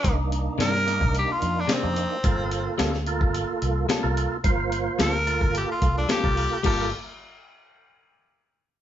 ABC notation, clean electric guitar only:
X:1
M:4/4
L:1/8
Q:1/4=109
K:Gm
V:1 name="Clean electric guitar"
z2 [C,E,B,D] z3 [C,E,B,D] z | z2 [G,B,FA] z3 [G,B,FA] z | z2 [G,B,FA] z3 [G,B,FA] z | [G,B,FA] z6 z |]